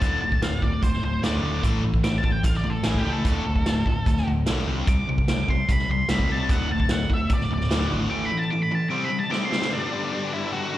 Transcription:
Already playing: lead electric guitar A5
0.02 fingered electric bass D1, overdriven electric guitar D2 A2 D3, kick, closed hi-hat
0.22 fingered electric bass D1, overdriven electric guitar D2 A2
0.32 kick
0.42 fingered electric bass D1, overdriven electric guitar D2 A2, lead electric guitar F5, snare, closed hi-hat
0.62 fingered electric bass D1, overdriven electric guitar D2 A2, lead electric guitar D5, kick
0.83 fingered electric bass D1, overdriven electric guitar D2 A2, lead electric guitar C5, kick, closed hi-hat
0.93 snare
1.03 fingered electric bass D1, overdriven electric guitar D2 A2, lead electric guitar C5
1.23 fingered electric bass D1, overdriven electric guitar D2 A2 D3, lead electric guitar D5, snare, closed hi-hat
1.43 fingered electric bass D1, overdriven electric guitar D2 A2 D3
1.63 fingered electric bass A1, overdriven electric guitar A2 E3 A3, kick, closed hi-hat
1.83 fingered electric bass A1, overdriven electric guitar A2 E3
1.94 kick
2.04 fingered electric bass A1, overdriven electric guitar A2 E3, lead electric guitar D6, snare, closed hi-hat
2.18 lead electric guitar A5
2.23 fingered electric bass A1, overdriven electric guitar A2 E3, kick
2.32 lead electric guitar G5
2.43 fingered electric bass A1, overdriven electric guitar A2 E3, lead electric guitar F5, kick, closed hi-hat
2.54 lead electric guitar D5, snare
2.64 fingered electric bass A1, overdriven electric guitar A2 E3
2.70 lead electric guitar A4
2.83 fingered electric bass A1, overdriven electric guitar A2 E3 A3, lead electric guitar G#4, snare, closed hi-hat
2.94 lead electric guitar G4, kick
3.05 fingered electric bass C#2, overdriven electric guitar A2 E3 A3
3.13 lead electric guitar A4
3.24 fingered electric bass D1, overdriven electric guitar D2 A2 D3, kick, closed hi-hat
3.45 fingered electric bass D1, overdriven electric guitar D2 A2
3.56 kick
3.66 fingered electric bass D1, overdriven electric guitar D2 A2, snare, closed hi-hat
3.86 fingered electric bass D1, overdriven electric guitar D2 A2, kick
4.06 fingered electric bass D1, overdriven electric guitar D2 A2, kick, closed hi-hat
4.17 snare
4.27 fingered electric bass D1, overdriven electric guitar D2 A2
4.46 fingered electric bass B1, overdriven electric guitar D2 A2 D3, snare, closed hi-hat
4.67 fingered electric bass C2, overdriven electric guitar C3 G3 C4
4.87 fingered electric bass C2, overdriven electric guitar C3 G3, lead electric guitar D6, kick, closed hi-hat
5.08 fingered electric bass C2, overdriven electric guitar C3 G3
5.18 kick
5.27 fingered electric bass C2, overdriven electric guitar C3 G3, lead electric guitar D6, snare, closed hi-hat
5.48 fingered electric bass C2, overdriven electric guitar C3 G3, lead electric guitar C6, kick
5.68 fingered electric bass C2, overdriven electric guitar C3 G3, lead electric guitar B5, kick, closed hi-hat
5.79 snare
5.89 fingered electric bass C2, overdriven electric guitar C3 G3, lead electric guitar C6
6.08 fingered electric bass C2, overdriven electric guitar C3 G3 C4, lead electric guitar B5, snare, closed hi-hat
6.19 kick
6.29 fingered electric bass C2, overdriven electric guitar C3 G3 C4, lead electric guitar A5
6.49 fingered electric bass D1, overdriven electric guitar D2 A2 D3, lead electric guitar F#5, kick, closed hi-hat
6.70 fingered electric bass D1, overdriven electric guitar D2 A2, lead electric guitar A5
6.80 kick
6.89 fingered electric bass D1, overdriven electric guitar D2 A2, lead electric guitar F#5, snare, closed hi-hat
7.09 fingered electric bass D1, overdriven electric guitar D2 A2, kick
7.14 lead electric guitar E5
7.30 fingered electric bass D1, overdriven electric guitar D2 A2, kick, closed hi-hat
7.34 lead electric guitar D5
7.41 snare
7.51 fingered electric bass D1, overdriven electric guitar D2 A2, lead electric guitar D5
7.61 snare
7.70 fingered electric bass D1, overdriven electric guitar D2 A2 D3, snare, closed hi-hat
7.91 fingered electric bass G#1, overdriven electric guitar D2 A2 D3
8.10 overdriven electric guitar A2 E3 A3, lead electric guitar D6
8.26 lead electric guitar B5
8.31 overdriven electric guitar A2 E3
8.37 lead electric guitar A5
8.50 overdriven electric guitar A2 E3, lead electric guitar D6
8.63 lead electric guitar B5
8.71 overdriven electric guitar A2 E3, lead electric guitar A5
8.90 overdriven electric guitar C3 G3 C4, lead electric guitar D6
9.05 lead electric guitar B5
9.10 overdriven electric guitar C3 G3
9.19 lead electric guitar A5
9.30 overdriven electric guitar C3 G3 C4, lead electric guitar D6, snare
9.42 tonewheel organ C4 D4, lead electric guitar C6
9.48 overdriven electric guitar C3 G3 C4, tonewheel organ E4 F4, snare
9.54 tonewheel organ G4 A4
9.59 tonewheel organ B4 C5, snare
9.64 tonewheel organ D5 E5
9.69 overdriven electric guitar G2 D3 G3, tonewheel organ G3 B3 D4 F5, lead electric guitar D4
9.92 overdriven electric guitar G2 D3 G3
10.12 overdriven electric guitar G2 D3 G3
10.32 overdriven electric guitar G2 D3 G3, lead electric guitar E4
10.52 overdriven electric guitar G2 D3 G3, lead electric guitar F#4
10.73 overdriven electric guitar G2 D3 G3

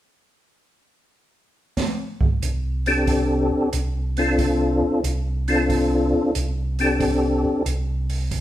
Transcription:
1.77 kick, snare, open hi-hat
2.21 kick
2.42 tonewheel organ C2, closed hi-hat
2.86 tonewheel organ C4 D4 G4 A4, open hi-hat
3.07 kick, open hi-hat
3.73 tonewheel organ C2, closed hi-hat
4.17 tonewheel organ C4 D4 F4 A4, open hi-hat
4.38 kick, open hi-hat
5.04 tonewheel organ C2, closed hi-hat
5.48 tonewheel organ C4 D4 F4 A4, open hi-hat
5.69 kick, open hi-hat
6.35 tonewheel organ C2, closed hi-hat
6.79 tonewheel organ C4 D4 G4 A4, open hi-hat
7.00 kick, open hi-hat
7.66 tonewheel organ C2, closed hi-hat
8.10 open hi-hat
8.31 kick, open hi-hat

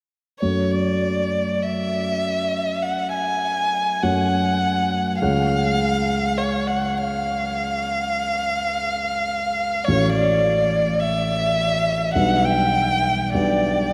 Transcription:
0.40 grand piano F#2 A3 F#4 C#5, violin C#5
0.70 violin D5
1.63 violin E5
2.82 violin F#5
3.13 violin G#5
4.03 grand piano F#2 A3 F#4 C#5, violin F#5
5.20 grand piano C#2 G#3 G#4 C#5, violin F5
6.38 violin C#5
6.68 violin F#5
6.98 violin F5
9.85 grand piano A1 A3 F#4, violin C#5
9.89 grand piano C#5
10.13 violin D5
11.00 violin E5
12.14 grand piano B1 G3 D4 B4, violin F#5
12.45 violin G5
13.34 grand piano B1 G3 D4 B4, violin D5

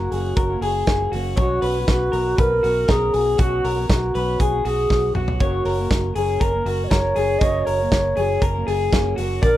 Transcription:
Already playing: steel-string acoustic guitar F#3 A#3 C#4 F#4, alto flute F#4, clean electric guitar A#4
0.11 fingered electric bass F#1, steel-string acoustic guitar F#3 A#3 C#4, clean electric guitar G#4, open hi-hat
0.15 steel-string acoustic guitar F#4
0.36 fingered electric bass F#1, clean electric guitar A#4, kick, closed hi-hat
0.50 steel-string acoustic guitar F#3 A#3 C#4 F#4
0.61 fingered electric bass F#1, clean electric guitar G#4, open hi-hat
0.87 fingered electric bass F#1, steel-string acoustic guitar F#3 A#3 C#4 F#4, kick, snare, closed hi-hat
1.12 fingered electric bass F#1, steel-string acoustic guitar F#3 A#3 C#4, clean electric guitar F#4, open hi-hat
1.16 steel-string acoustic guitar F#4
1.36 fingered electric bass B1, steel-string acoustic guitar B2 F#3 B3 C#4, alto flute F#4, clean electric guitar C#5, kick, closed hi-hat
1.41 steel-string acoustic guitar F#4
1.62 fingered electric bass B1, clean electric guitar B4, open hi-hat
1.74 steel-string acoustic guitar B3 C#4 F#4
1.88 fingered electric bass B1, alto flute F#4, kick, snare, closed hi-hat
2.12 fingered electric bass B1, steel-string acoustic guitar F#3 B3 C#4 F#4, clean electric guitar A#4, open hi-hat
2.37 fingered electric bass B1, alto flute A#4, clean electric guitar B4, kick, closed hi-hat
2.50 steel-string acoustic guitar B3 C#4 F#4
2.63 fingered electric bass B1, clean electric guitar F#4, open hi-hat
2.88 fingered electric bass B1, steel-string acoustic guitar F#3 B3 C#4 F#4, alto flute G#4, clean electric guitar A#4, kick, snare, closed hi-hat
3.13 fingered electric bass B1, steel-string acoustic guitar F#3 B3 C#4 F#4, clean electric guitar G#4, open hi-hat
3.38 fingered electric bass B1, steel-string acoustic guitar B2 F#3 B3 C#4 F#4, clean electric guitar F#4, alto flute F#4, kick, closed hi-hat
3.64 fingered electric bass B1, clean electric guitar A#4, open hi-hat
3.77 steel-string acoustic guitar B3 C#4 F#4
3.90 fingered electric bass B1, alto flute F#4, kick, snare, closed hi-hat
4.14 fingered electric bass B1, steel-string acoustic guitar F#3 B3 C#4 F#4, clean electric guitar B4, open hi-hat
4.40 fingered electric bass B1, clean electric guitar G#4, kick, closed hi-hat
4.51 steel-string acoustic guitar B3 C#4 F#4
4.65 fingered electric bass B1, clean electric guitar F#4, alto flute G#4, open hi-hat
4.89 fingered electric bass B1, steel-string acoustic guitar F#3 B3 C#4 F#4, kick, snare
5.13 fingered electric bass B1, steel-string acoustic guitar F#3 B3 C#4 F#4, alto flute F#4, clean electric guitar F#4, mid tom
5.28 floor tom
5.39 fingered electric bass F#1, steel-string acoustic guitar F#2 C#3 F#3 A#3 C#4 A#4, alto flute F#4, clean electric guitar C#5, kick, closed hi-hat
5.65 fingered electric bass F#1, clean electric guitar A#4, open hi-hat
5.77 steel-string acoustic guitar F#3 A#3 C#4 A#4
5.91 fingered electric bass F#1, kick, snare, closed hi-hat
6.15 fingered electric bass F#1, steel-string acoustic guitar F#3 A#3 C#4 A#4, clean electric guitar G#4, open hi-hat
6.40 fingered electric bass F#1, clean electric guitar A#4, alto flute A#4, kick, closed hi-hat
6.53 steel-string acoustic guitar F#3 A#3 C#4 A#4
6.66 fingered electric bass F#1, clean electric guitar F#4, open hi-hat
6.84 alto flute C#5 D#5
6.90 fingered electric bass F#1, steel-string acoustic guitar F#3 A#3 C#4 A#4, clean electric guitar A#4, kick, snare, closed hi-hat
7.15 fingered electric bass F#1, steel-string acoustic guitar F#3 A#3 C#4 A#4, clean electric guitar G#4, open hi-hat
7.39 fingered electric bass F#1, steel-string acoustic guitar F#2 C#3 F#3 A#3 C#4, clean electric guitar C#5, alto flute D#5, kick, closed hi-hat
7.43 steel-string acoustic guitar A#4
7.65 fingered electric bass F#1, clean electric guitar A#4, alto flute C#5, open hi-hat
7.80 steel-string acoustic guitar F#3 A#3 C#4 A#4
7.92 fingered electric bass F#1, kick, snare, closed hi-hat
8.17 fingered electric bass F#1, steel-string acoustic guitar F#3 A#3 C#4, clean electric guitar G#4, open hi-hat
8.21 steel-string acoustic guitar A#4
8.42 fingered electric bass F#1, clean electric guitar A#4, kick, closed hi-hat
8.54 steel-string acoustic guitar F#3 A#3 C#4 A#4
8.67 fingered electric bass F#1, clean electric guitar G#4, open hi-hat
8.92 fingered electric bass F#1, steel-string acoustic guitar F#3 A#3 C#4 A#4, kick, snare, closed hi-hat
9.16 fingered electric bass F#1, steel-string acoustic guitar F#3 A#3, clean electric guitar F#4, open hi-hat
9.21 steel-string acoustic guitar C#4 A#4
9.42 fingered electric bass A#1, steel-string acoustic guitar A#2 D3 F3 A#3 D4 A#4, alto flute A#4, clean electric guitar D5, kick, closed hi-hat

